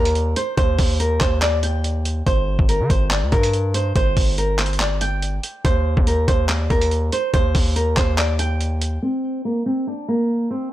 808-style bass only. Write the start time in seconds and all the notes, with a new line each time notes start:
Already playing: D#2
0.57 D#2
0.79 D#2
1.21 D#2
2.27 G1
2.59 G1
2.80 D3
2.90 G1
3.22 D2
3.32 G2
3.96 G1
4.17 G1
5.65 D#2
5.97 D#2
6.28 D#2
6.70 D#2
7.34 D#2
7.55 D#2
7.97 D#2